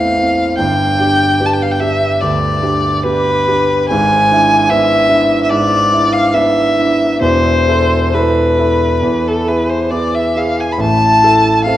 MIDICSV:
0, 0, Header, 1, 3, 480
1, 0, Start_track
1, 0, Tempo, 813008
1, 340, Time_signature, 4, 2, 24, 8
1, 1782, Tempo, 883652
1, 2262, Tempo, 797872
1, 3222, Tempo, 836820
1, 3702, Tempo, 898204
1, 5622, Tempo, 867052
1, 6642, End_track
2, 0, Start_track
2, 0, Title_t, "Violin"
2, 0, Program_c, 0, 40
2, 0, Note_on_c, 0, 77, 91
2, 335, Note_off_c, 0, 77, 0
2, 339, Note_on_c, 0, 79, 96
2, 858, Note_on_c, 0, 81, 70
2, 866, Note_off_c, 0, 79, 0
2, 904, Note_on_c, 0, 79, 72
2, 912, Note_off_c, 0, 81, 0
2, 956, Note_on_c, 0, 77, 70
2, 965, Note_off_c, 0, 79, 0
2, 1008, Note_on_c, 0, 79, 70
2, 1017, Note_off_c, 0, 77, 0
2, 1060, Note_on_c, 0, 76, 86
2, 1068, Note_off_c, 0, 79, 0
2, 1299, Note_on_c, 0, 74, 76
2, 1308, Note_off_c, 0, 76, 0
2, 1789, Note_on_c, 0, 71, 93
2, 1797, Note_off_c, 0, 74, 0
2, 2252, Note_off_c, 0, 71, 0
2, 2256, Note_on_c, 0, 80, 103
2, 2739, Note_on_c, 0, 76, 106
2, 2748, Note_off_c, 0, 80, 0
2, 3177, Note_off_c, 0, 76, 0
2, 3180, Note_on_c, 0, 76, 72
2, 3220, Note_on_c, 0, 74, 94
2, 3228, Note_off_c, 0, 76, 0
2, 3581, Note_on_c, 0, 77, 90
2, 3590, Note_off_c, 0, 74, 0
2, 3702, Note_on_c, 0, 76, 89
2, 3710, Note_off_c, 0, 77, 0
2, 4167, Note_off_c, 0, 76, 0
2, 4170, Note_on_c, 0, 72, 96
2, 4664, Note_on_c, 0, 71, 76
2, 4672, Note_off_c, 0, 72, 0
2, 5271, Note_on_c, 0, 69, 71
2, 5279, Note_off_c, 0, 71, 0
2, 5380, Note_on_c, 0, 71, 70
2, 5389, Note_off_c, 0, 69, 0
2, 5492, Note_on_c, 0, 72, 67
2, 5500, Note_off_c, 0, 71, 0
2, 5608, Note_on_c, 0, 74, 76
2, 5616, Note_off_c, 0, 72, 0
2, 5742, Note_on_c, 0, 76, 77
2, 5750, Note_off_c, 0, 74, 0
2, 5867, Note_on_c, 0, 77, 78
2, 5875, Note_off_c, 0, 76, 0
2, 5992, Note_on_c, 0, 80, 80
2, 6001, Note_off_c, 0, 77, 0
2, 6059, Note_on_c, 0, 83, 58
2, 6067, Note_off_c, 0, 80, 0
2, 6101, Note_on_c, 0, 81, 100
2, 6109, Note_off_c, 0, 83, 0
2, 6567, Note_off_c, 0, 81, 0
2, 6570, Note_on_c, 0, 77, 99
2, 6642, Note_off_c, 0, 77, 0
2, 6642, End_track
3, 0, Start_track
3, 0, Title_t, "Grand piano"
3, 0, Program_c, 1, 0
3, 0, Control_c, 1, 64, 127
3, 0, Note_on_c, 1, 40, 45
3, 0, Note_on_c, 1, 57, 37
3, 0, Note_on_c, 1, 60, 37
3, 0, Note_on_c, 1, 64, 39
3, 83, Note_off_c, 1, 57, 0
3, 84, Note_off_c, 1, 64, 0
3, 85, Note_off_c, 1, 60, 0
3, 109, Note_on_c, 1, 60, 40
3, 110, Note_on_c, 1, 64, 41
3, 320, Note_off_c, 1, 60, 0
3, 321, Note_off_c, 1, 64, 0
3, 343, Note_on_c, 1, 31, 46
3, 348, Note_on_c, 1, 43, 53
3, 351, Control_c, 1, 64, 0
3, 353, Note_off_c, 1, 40, 0
3, 458, Control_c, 1, 64, 127
3, 571, Note_off_c, 1, 31, 0
3, 574, Note_off_c, 1, 43, 0
3, 587, Note_on_c, 1, 62, 41
3, 591, Note_on_c, 1, 67, 47
3, 798, Note_off_c, 1, 62, 0
3, 801, Note_off_c, 1, 67, 0
3, 825, Note_on_c, 1, 59, 43
3, 830, Note_on_c, 1, 62, 44
3, 831, Note_on_c, 1, 67, 47
3, 1037, Note_off_c, 1, 59, 0
3, 1040, Note_off_c, 1, 62, 0
3, 1040, Note_off_c, 1, 67, 0
3, 1066, Note_on_c, 1, 62, 43
3, 1068, Note_on_c, 1, 67, 47
3, 1278, Note_off_c, 1, 62, 0
3, 1278, Note_off_c, 1, 67, 0
3, 1311, Note_on_c, 1, 38, 51
3, 1538, Note_off_c, 1, 38, 0
3, 1549, Note_on_c, 1, 62, 48
3, 1552, Note_on_c, 1, 67, 49
3, 1763, Note_off_c, 1, 62, 0
3, 1765, Note_off_c, 1, 67, 0
3, 1794, Note_on_c, 1, 59, 45
3, 1796, Note_on_c, 1, 62, 43
3, 1797, Note_on_c, 1, 67, 48
3, 2006, Note_off_c, 1, 59, 0
3, 2006, Note_off_c, 1, 62, 0
3, 2007, Note_off_c, 1, 67, 0
3, 2030, Note_on_c, 1, 62, 44
3, 2032, Note_on_c, 1, 67, 50
3, 2244, Note_off_c, 1, 62, 0
3, 2245, Note_off_c, 1, 67, 0
3, 2264, Note_on_c, 1, 32, 58
3, 2269, Note_on_c, 1, 44, 64
3, 2273, Control_c, 1, 64, 0
3, 2359, Control_c, 1, 64, 127
3, 2498, Note_off_c, 1, 32, 0
3, 2500, Note_off_c, 1, 44, 0
3, 2512, Note_on_c, 1, 62, 50
3, 2512, Note_on_c, 1, 64, 54
3, 2718, Note_off_c, 1, 62, 0
3, 2718, Note_off_c, 1, 64, 0
3, 2746, Note_on_c, 1, 59, 50
3, 2747, Note_on_c, 1, 64, 50
3, 2748, Note_on_c, 1, 62, 51
3, 2957, Note_off_c, 1, 59, 0
3, 2958, Note_off_c, 1, 62, 0
3, 2958, Note_off_c, 1, 64, 0
3, 2980, Note_on_c, 1, 62, 50
3, 2980, Note_on_c, 1, 64, 53
3, 3200, Note_off_c, 1, 62, 0
3, 3200, Note_off_c, 1, 64, 0
3, 3226, Note_on_c, 1, 44, 59
3, 3454, Note_off_c, 1, 44, 0
3, 3463, Note_on_c, 1, 62, 47
3, 3465, Note_on_c, 1, 64, 55
3, 3680, Note_off_c, 1, 62, 0
3, 3682, Note_off_c, 1, 64, 0
3, 3702, Note_on_c, 1, 59, 47
3, 3707, Note_on_c, 1, 62, 51
3, 3708, Note_on_c, 1, 64, 50
3, 3913, Note_off_c, 1, 59, 0
3, 3915, Note_off_c, 1, 62, 0
3, 3916, Note_off_c, 1, 64, 0
3, 3938, Note_on_c, 1, 62, 46
3, 3942, Note_on_c, 1, 64, 49
3, 4154, Note_off_c, 1, 62, 0
3, 4155, Note_off_c, 1, 64, 0
3, 4170, Note_on_c, 1, 28, 58
3, 4174, Note_on_c, 1, 40, 59
3, 4184, Control_c, 1, 64, 0
3, 4264, Control_c, 1, 64, 127
3, 4408, Note_off_c, 1, 28, 0
3, 4410, Note_off_c, 1, 40, 0
3, 4424, Note_on_c, 1, 64, 41
3, 4426, Note_on_c, 1, 69, 46
3, 4646, Note_off_c, 1, 64, 0
3, 4646, Note_off_c, 1, 69, 0
3, 4664, Note_on_c, 1, 59, 45
3, 4666, Note_on_c, 1, 64, 42
3, 4671, Note_on_c, 1, 69, 46
3, 4886, Note_off_c, 1, 59, 0
3, 4887, Note_off_c, 1, 64, 0
3, 4889, Note_off_c, 1, 69, 0
3, 4903, Note_on_c, 1, 64, 42
3, 4904, Note_on_c, 1, 69, 45
3, 5122, Note_off_c, 1, 64, 0
3, 5123, Note_off_c, 1, 69, 0
3, 5138, Note_on_c, 1, 40, 54
3, 5157, Control_c, 1, 64, 0
3, 5257, Control_c, 1, 64, 127
3, 5373, Note_off_c, 1, 40, 0
3, 5378, Note_on_c, 1, 64, 41
3, 5383, Note_on_c, 1, 68, 42
3, 5597, Note_off_c, 1, 64, 0
3, 5600, Note_off_c, 1, 68, 0
3, 5615, Note_on_c, 1, 59, 39
3, 5616, Note_on_c, 1, 64, 39
3, 5621, Note_on_c, 1, 68, 42
3, 5840, Note_off_c, 1, 59, 0
3, 5841, Note_off_c, 1, 64, 0
3, 5844, Note_off_c, 1, 68, 0
3, 5860, Note_on_c, 1, 64, 40
3, 5863, Note_on_c, 1, 68, 44
3, 6082, Note_off_c, 1, 64, 0
3, 6084, Note_off_c, 1, 68, 0
3, 6093, Note_on_c, 1, 33, 53
3, 6100, Note_on_c, 1, 45, 51
3, 6118, Control_c, 1, 64, 0
3, 6207, Control_c, 1, 64, 127
3, 6332, Note_off_c, 1, 33, 0
3, 6336, Note_off_c, 1, 45, 0
3, 6344, Note_on_c, 1, 64, 40
3, 6348, Note_on_c, 1, 69, 48
3, 6560, Note_off_c, 1, 64, 0
3, 6562, Note_off_c, 1, 69, 0
3, 6581, Note_on_c, 1, 60, 45
3, 6583, Note_on_c, 1, 64, 45
3, 6585, Note_on_c, 1, 69, 47
3, 6642, Note_off_c, 1, 60, 0
3, 6642, Note_off_c, 1, 64, 0
3, 6642, Note_off_c, 1, 69, 0
3, 6642, End_track
0, 0, End_of_file